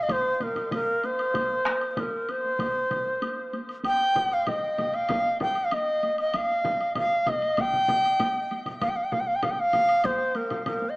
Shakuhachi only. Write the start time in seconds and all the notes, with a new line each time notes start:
0.03 D#5
0.11 C5
0.35 C5
0.43 A#4
0.74 A#4
1.05 C5
1.91 C5
1.99 A#4
2.30 C5
3.86 G5
4.33 F5
4.48 D#5
4.94 F5
5.42 G5
5.64 F5
5.73 D#5
6.20 D#5
6.36 F5
6.97 F5
7.29 D#5
7.60 G5
8.81 F5
8.89 G5
8.96 F5
9.04 G5
9.12 F5
9.20 G5
9.27 F5
9.35 G5
9.43 F5
9.50 G5
9.59 F5
10.05 C5
10.36 A#4
10.66 A#4
10.89 D#5